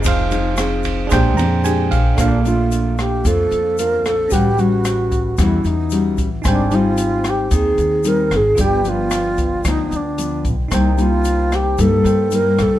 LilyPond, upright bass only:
\new Staff \with { instrumentName = "Upright bass" } { \clef bass \time 4/4 \key bes \mixolydian \tempo 4 = 112 f,,2 bes,,8 f,4 bes,,8 | \key bes \major bes,,2 f,8 f,4 bes,,8 | a,,2 e,8 e,4 a,,8 | aes,,2 ees,8 ees,4 aes,,8 |
g,,2 d,8 d,4 b,,8 | c,2 g,8 g,4 c,8 | }